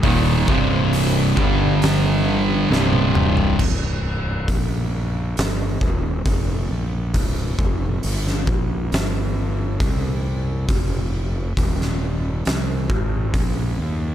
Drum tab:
CC |----------------|x---------------|----------------|----------------|
HH |o---o---o-------|----o---o---o---|o---o---o---o---|o---o---o---o---|
SD |--------o---o---|--------o-------|-----o--o-------|-----o--o-------|
T1 |-------------o--|----------------|----------------|----------------|
T2 |--------------o-|----------------|----------------|----------------|
FT |---------------o|----------------|----------------|----------------|
BD |o-o---o---------|o---o-----o-o---|o-o---o-----o---|o---o-----o-o---|